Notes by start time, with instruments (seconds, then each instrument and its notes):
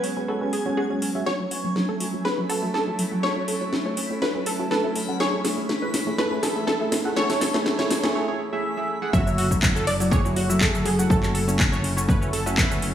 Already playing: ambient pad F#3 B3 C#4 G#5, synth stab G#3 C#4 F#4 B4, synth pluck F#4, synth texture G#5
0.04 synth pluck C#4, open hi-hat
0.17 synth stab G#3 C#4 F#4 B4, synth pluck C#4
0.28 synth stab G#3 C#4 F#4 B4, synth pluck A4
0.41 synth stab G#3 C#4 F#4 B4, synth pluck C#4
0.53 synth pluck G#4, open hi-hat
0.66 synth stab G#3 C#4 F#4 C#5, synth pluck C#4
0.77 synth pluck F#4 G#4
0.90 synth stab G#3 C#4 F#4 C#5, synth pluck C#4
1.02 synth pluck C#4, open hi-hat
1.15 synth stab G#3 C#4 F#4 E5, synth pluck C#4
1.26 ambient pad F#3 A3 C#4 E4, synth stab A3 E4 F#4, synth pluck F#4 C#5, synth texture B5, synth bell C#6, snare
1.40 synth pluck F#3, synth stab A3 E4 F#4 C#5
1.51 synth pluck F#4, open hi-hat
1.64 synth pluck F#3, synth stab A3 E4 F#4 C#5
1.76 synth pluck F#3, snare
1.89 synth stab A3 E4 F#4 C#5, synth pluck A4
2.00 synth pluck F#3, open hi-hat
2.13 synth pluck F#3, synth stab A3 E4 F#4 C#5
2.25 synth stab A3 E4 F#4 C#5, synth pluck G#4 B4, synth bell B5, snare
2.38 synth pluck F#3, synth stab A3 E4 F#4 C#5
2.49 synth pluck F#4 A4, synth bell A5, open hi-hat
2.63 synth pluck F#3, synth stab A3 E4 F#4 E5
2.74 synth pluck G#4 A4, synth bell A5, snare
2.87 synth pluck F#3, synth stab A3 E4 F#4 E5
2.99 synth pluck F#3, open hi-hat
3.12 synth pluck F#3, synth stab A3 E4 F#4 F#5
3.23 synth stab A3 E4 F#4 C#5, synth pluck A4 C#5, synth bell C#6, snare
3.36 synth stab A3 E4 F#4 C#5, synth pluck C#4
3.48 synth pluck A4, open hi-hat
3.61 synth stab A3 E4 F#4 C#5, synth pluck C#4
3.73 synth pluck C#4, snare
3.86 synth stab A3 E4 F#4 C#5, synth pluck C#5
3.97 synth pluck C#4, open hi-hat
4.10 synth stab A3 E4 F#4 C#5, synth pluck C#4
4.22 synth stab A3 E4 F#4 C#5, synth pluck B4, synth bell B5, snare
4.35 synth stab A3 E4 F#4 C#5, synth pluck C#4
4.46 synth pluck A4, synth bell A5, open hi-hat
4.59 synth stab A3 E4 F#4 E5, synth pluck C#4
4.71 synth pluck A4 B4, synth bell A5, snare
4.84 synth stab A3 E4 F#4 E5, synth pluck C#4
4.96 synth pluck C#4, open hi-hat
5.08 synth stab A3 E4 F#4 F#5, synth pluck C#4
5.20 ambient pad E3, synth stab A3 E4 G#4 C#5, synth pluck G#4 C#5, synth bell C#6, snare
5.33 synth pluck A3, synth stab A3 E4 G#4 C#5
5.45 synth pluck G#4, snare, open hi-hat
5.58 synth pluck A3, synth stab A3 E4 G#4 C#5
5.69 synth pluck A3, snare
5.82 synth stab A3 E4 G#4 C#5, synth pluck B4
5.94 synth pluck A3, snare, open hi-hat
6.07 synth pluck A3, synth stab A3 E4 G#4 C#5
6.18 synth stab A3 E4 G#4 C#5, synth pluck A4 B4, synth bell B5, snare
6.31 synth pluck A3, synth stab A3 E4 G#4 C#5
6.43 synth pluck G#4 A4, synth bell A5, snare, open hi-hat
6.56 synth pluck A3, synth stab A3 E4 G#4 E5
6.67 synth pluck A4, synth bell A5, snare
6.80 synth pluck A3, synth stab A3 E4 G#4 E5
6.92 synth pluck A3, snare, open hi-hat
7.05 synth pluck A3, synth stab A3 E4 G#4 F#5
7.16 synth stab A3 E4 G#4 C#5, synth pluck A4 C#5, synth bell C#6, snare
7.30 synth pluck A3, synth stab A3 E4 G#4 C#5, snare, open hi-hat
7.41 synth pluck A4, snare, open hi-hat
7.54 synth pluck A3, synth stab A3 E4 G#4 C#5, snare
7.66 synth pluck A3, snare
7.79 synth stab A3 E4 G#4 C#5, synth pluck C#5, snare
7.90 synth pluck A3, snare, open hi-hat
8.03 synth pluck A3, synth stab A3 E4 G#4 C#5, snare
8.15 synth stab A3 E4 G#4 C#5
8.28 synth stab A3 E4 G#4 C#5
8.53 synth stab A3 E4 G#4 E5
8.77 synth stab A3 E4 G#4 E5
9.02 synth stab A3 E4 G#4 F#5
9.13 analog synth bass F#1, ambient pad C#3 A3 E4 F#4, synth stab A3 E4 C#5, synth pluck F#4 E5, synth bell E6, kick, shaker
9.26 synth pluck F#3, synth stab A3 E4 F#4 C#5, shaker
9.38 synth pluck F#4, open hi-hat
9.51 synth pluck F#3, synth stab A3 E4 F#4 C#5, kick, shaker
9.63 synth pluck F#3, kick, clap, shaker
9.76 synth stab A3 E4 F#4 C#5, synth pluck A4, shaker
9.87 synth pluck F#3 D5, synth bell D6, open hi-hat
10.00 synth pluck F#3, synth stab A3 E4 F#4 C#5, open hi-hat, shaker
10.11 synth stab A3 E4 F#4 C#5, synth pluck G#4 C#5, synth bell C#6, kick, shaker
10.25 synth pluck F#3, synth stab A3 E4 F#4 C#5, shaker
10.36 synth pluck F#4, open hi-hat
10.49 synth pluck F#3, synth stab A3 E4 F#4 E5, shaker
10.61 synth pluck G#4 A4, synth bell A5, kick, clap, shaker
10.74 synth pluck F#3, synth stab A3 E4 F#4 E5, shaker
10.85 synth pluck F#3 G#4, synth bell G#5, open hi-hat
10.98 synth pluck F#3, synth stab A3 E4 F#4 F#5, shaker
11.10 analog synth bass F#1, synth stab A3 E4 F#4 C#5, synth pluck A4, synth bell A5, kick, shaker
11.23 synth stab A3 E4 F#4 C#5, synth pluck C#4, clap, shaker
11.35 synth pluck A4, open hi-hat
11.48 synth stab A3 E4 F#4 C#5, synth pluck C#4, shaker
11.59 synth pluck C#4, kick, clap, shaker
11.72 synth stab A3 E4 F#4 C#5, synth pluck C#5, shaker
11.84 synth pluck C#4, open hi-hat
11.97 synth stab A3 E4 F#4 C#5, synth pluck C#4, shaker
12.08 synth stab A3 E4 F#4 C#5, synth pluck B4, kick, shaker
12.21 synth stab A3 E4 F#4 C#5, synth pluck C#4, shaker
12.33 synth pluck A4, open hi-hat
12.46 synth stab A3 E4 F#4 E5, synth pluck C#4, shaker
12.58 synth pluck B4, kick, clap, shaker
12.71 synth stab A3 E4 F#4 E5, synth pluck C#4, shaker
12.82 synth pluck C#4, open hi-hat